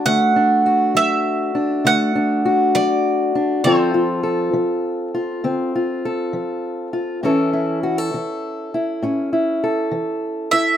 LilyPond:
<<
  \new Staff \with { instrumentName = "Mandolin" } { \time 12/8 \key d \major \tempo 4. = 67 fis''4. e''4. fis''4. d''4. | c''4 r1 r4 | r1 r4. e''8 | }
  \new Staff \with { instrumentName = "Steel-string acoustic guitar" } { \time 12/8 \key d \major << { <a fis'>8 d'8 fis'4. d'8 a8 d'8 fis'4. d'8 | <f c' f' a'>8 f'8 a'4. f'8 c'8 f'8 a'4. f'8 | <e cis' e' a'>8 e'8 fis'16 a'4~ a'16 e'8 cis'8 e'8 a'4. e'8 | } \\ { d4 r8 fis4 r8 d4 r8 fis4 r8 | d4 r8 f4 r8 d4 r8 f4 r8 | a,4 r8 e4 r8 a,4 r8 e4 r8 | } >> }
>>